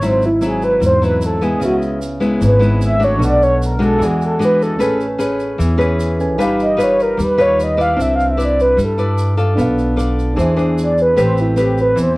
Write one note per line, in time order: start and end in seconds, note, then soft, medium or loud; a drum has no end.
0.01 0.78 G#1 medium
0.01 0.79 G#2 medium
0.01 0.28 F#3 medium
0.01 0.28 C4 medium
0.01 0.28 E4 medium
0.01 shaker medium
0.07 0.24 C5 medium
0.22 0.43 E4 medium
0.22 shaker soft
0.41 0.98 F#3 medium
0.41 0.98 C4 medium
0.41 0.99 E4 medium
0.41 shaker medium
0.47 0.63 G#4 medium
0.62 0.82 B4 medium
0.62 shaker soft
0.80 1.61 E2 medium
0.80 1.59 G#2 medium
0.80 shaker medium
0.86 1.03 C5 medium
1.02 1.38 F#3 medium
1.02 1.38 C4 medium
1.02 1.39 E4 medium
1.02 1.22 B4 medium
1.02 shaker soft
1.22 shaker medium
1.26 1.43 A4 medium
1.41 1.98 G#3 medium
1.41 1.98 B3 medium
1.41 1.98 E4 medium
1.41 1.62 G#4 medium
1.41 shaker soft
1.58 2.37 C#2 medium
1.58 2.38 C#3 medium
1.58 3.16 C#4 soft
1.58 3.17 G#4 soft
1.58 shaker medium
1.62 1.76 F#4 medium
1.62 3.18 B4 soft
1.62 3.19 E5 medium
1.82 shaker soft
2.02 shaker medium
2.20 2.57 G#3 medium
2.20 2.57 B3 medium
2.20 2.58 E4 medium
2.20 shaker soft
2.40 3.20 G#1 loud
2.40 3.18 G#2 medium
2.40 shaker medium
2.44 2.80 B4 medium
2.59 2.97 G#3 medium
2.59 2.97 B3 medium
2.59 2.97 E4 medium
2.59 shaker soft
2.81 3.02 E5 loud
2.81 shaker medium
3.00 3.77 A3 medium
3.00 3.77 D4 medium
3.00 3.77 F#4 medium
3.00 shaker soft
3.04 3.22 C#5 medium
3.18 3.96 B1 medium
3.18 3.98 B2 medium
3.18 3.97 D4 soft
3.18 3.98 A4 soft
3.22 4.00 B4 soft
3.22 3.43 D5 medium
3.22 4.01 F#5 medium
3.22 shaker medium
3.42 3.61 C#5 loud
3.42 shaker soft
3.62 3.83 A#4 medium
3.62 shaker medium
3.79 4.36 G#3 medium
3.79 4.37 D4 medium
3.79 4.37 F#4 medium
3.79 shaker soft
3.85 4.02 A4 loud
3.97 4.81 E2 medium
3.97 4.77 E3 medium
3.97 4.77 E4 soft
3.97 4.78 G#4 soft
4.02 4.79 D5 soft
4.02 4.80 F#5 medium
4.02 shaker medium
4.06 4.23 G#4 medium
4.21 4.42 A4 medium
4.21 shaker soft
4.39 4.76 G#3 medium
4.39 4.77 D4 medium
4.39 4.77 F#4 medium
4.39 shaker medium
4.45 4.62 B4 loud
4.62 4.99 A4 medium
4.62 shaker soft
4.76 5.57 A3 medium
4.76 6.15 C#4 soft
4.76 5.05 C#4 medium
4.76 5.06 G#4 medium
4.76 5.06 B4 medium
4.80 5.56 A1 medium
4.80 6.17 B4 soft
4.80 6.18 G#5 medium
4.80 shaker medium
5.01 shaker soft
5.18 5.76 C#4 medium
5.18 5.76 G#4 medium
5.18 5.76 B4 medium
5.18 shaker medium
5.40 shaker soft
5.58 6.39 E2 medium
5.58 6.37 E3 medium
5.58 shaker medium
5.78 6.37 C#4 medium
5.78 6.37 G#4 medium
5.78 6.37 B4 medium
5.78 shaker soft
6.00 shaker medium
6.18 6.39 C#4 soft
6.18 6.39 A4 soft
6.18 6.38 B4 soft
6.18 6.40 G#5 medium
6.18 shaker soft
6.36 7.15 G1 medium
6.36 7.16 G3 medium
6.36 7.94 D#4 medium
6.36 6.64 D#4 medium
6.36 6.64 F4 medium
6.36 7.95 G4 medium
6.36 6.65 B4 medium
6.40 7.96 B4 medium
6.40 7.97 F5 medium
6.40 shaker medium
6.60 6.80 D#5 medium
6.60 shaker soft
6.77 7.18 D#4 medium
6.77 7.18 F4 medium
6.77 7.18 B4 medium
6.77 shaker medium
6.83 7.01 C#5 medium
7.00 7.20 A#4 medium
7.00 shaker soft
7.17 7.94 D#2 loud
7.17 7.96 G3 medium
7.17 shaker medium
7.24 7.40 B4 medium
7.38 7.75 D#4 medium
7.38 7.75 F4 medium
7.38 7.75 B4 medium
7.38 7.59 C#5 loud
7.38 shaker soft
7.60 7.81 D#5 medium
7.60 shaker medium
7.77 8.35 E4 medium
7.77 8.35 B4 medium
7.77 8.35 D5 medium
7.77 shaker soft
7.81 7.99 F5 loud
7.95 8.75 C2 medium
7.95 8.75 C4 medium
7.95 9.53 D4 soft
7.95 9.54 B4 soft
8.00 9.56 E5 soft
8.00 8.13 E5 medium
8.00 shaker medium
8.16 8.27 F5 loud
8.20 shaker soft
8.31 8.41 E5 medium
8.37 8.94 E4 soft
8.37 8.94 B4 soft
8.37 8.95 D5 medium
8.37 shaker medium
8.45 8.61 D5 medium
8.60 8.79 B4 medium
8.60 shaker soft
8.77 9.54 G2 medium
8.77 9.55 G3 medium
8.77 shaker medium
8.84 9.57 A4 medium
8.98 9.35 E4 medium
8.98 9.35 B4 medium
8.98 9.35 D5 medium
8.98 shaker soft
9.18 shaker medium
9.37 9.94 F4 medium
9.37 9.94 A4 medium
9.37 9.95 D5 medium
9.37 shaker soft
9.55 10.34 B1 loud
9.55 10.35 B3 medium
9.55 10.32 D4 medium
9.55 10.36 A4 medium
9.55 shaker medium
9.59 10.37 B4 medium
9.59 10.37 F5 medium
9.79 shaker soft
9.96 10.35 F4 medium
9.96 10.36 A4 medium
9.96 10.36 D5 medium
9.96 shaker medium
10.19 shaker soft
10.34 11.15 E3 medium
10.34 11.14 D4 medium
10.34 10.54 D4 medium
10.34 11.15 G#4 medium
10.34 10.54 G#4 medium
10.34 10.54 C5 medium
10.38 11.14 E2 medium
10.38 11.16 C5 soft
10.38 11.17 E5 medium
10.38 shaker medium
10.56 11.14 D4 medium
10.56 11.14 G#4 medium
10.56 11.14 C5 medium
10.56 shaker soft
10.78 shaker medium
10.83 10.99 D5 medium
10.98 11.19 B4 medium
10.98 shaker soft
11.14 11.93 A1 medium
11.14 11.95 A3 soft
11.14 12.17 C4 medium
11.14 11.54 C4 medium
11.14 11.54 G4 medium
11.14 12.17 A4 soft
11.14 12.17 B4 soft
11.14 11.54 B4 medium
11.18 12.17 G5 medium
11.18 shaker medium
11.23 11.40 C5 medium
11.37 11.59 E4 medium
11.37 shaker soft
11.56 12.13 C4 medium
11.56 12.14 G4 soft
11.56 12.14 B4 medium
11.56 shaker medium
11.62 11.79 G4 medium
11.78 11.99 B4 medium
11.78 shaker soft
11.95 12.17 E2 medium
11.95 12.17 E3 medium
11.95 shaker medium
12.03 12.13 C5 medium